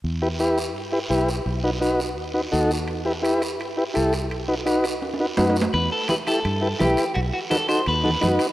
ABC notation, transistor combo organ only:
X:1
M:4/4
L:1/8
Q:1/4=169
K:Em
V:1 name="Transistor combo organ"
z [EGB] [EGB] z2 [EGB] [EGB] z | z [^DFB] [DFB] z2 [DFB] [DFA] z | z [EGB] [EGB] z2 [EGB] [EGA] z | z [^DFB] [DFB] z2 [DFB] [DFB] z |
z2 [EGB] [EGA] z [EGB] [EGB] z | z2 [^DFB] [DFA] z [DFA] [DFB] z |]